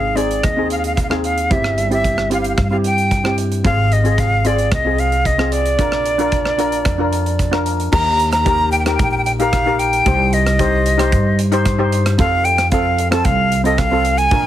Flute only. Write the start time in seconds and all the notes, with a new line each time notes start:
Already playing: F5
0.16 D5
0.44 D#5
0.71 F5
0.78 F5
0.86 F5
0.95 F5
1.03 F5
1.10 F5
1.24 F5
1.52 E5
1.93 E5
2.33 F5
2.41 F5
2.48 F5
2.56 F5
2.64 F5
2.70 F5
2.86 G5
3.65 F5
3.93 D#5
4.19 F5
4.46 D5
4.74 D#5
5.00 F5
5.26 D#5
5.52 D5
7.92 A#5
8.32 A#5
8.72 G5
8.79 G5
8.87 G5
8.94 G5
9.02 G5
9.11 G5
9.18 G5
9.25 G5
9.39 F5
9.79 G5
10.33 D#5
12.19 F5
12.45 G5
12.71 F5
13.12 A5
13.25 F5
13.65 D#5
13.79 F5
14.18 G#5